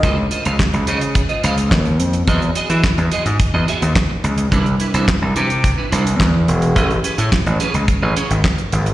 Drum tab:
HH |x-xx-xxxxxxx-xxx|xxxx-xxxx-xx--xx|xxxx--xxx-xx--xx|xxxx-xxxx-xx-xxx|
CP |----x-------x---|----x-------x---|----x-------x---|----x-------x---|
SD |----o-------o---|----o-------o---|----o-------o---|----o-------o---|
BD |o---o---o---o---|o---o---o---o---|o---o---o---o---|o---o---o---o---|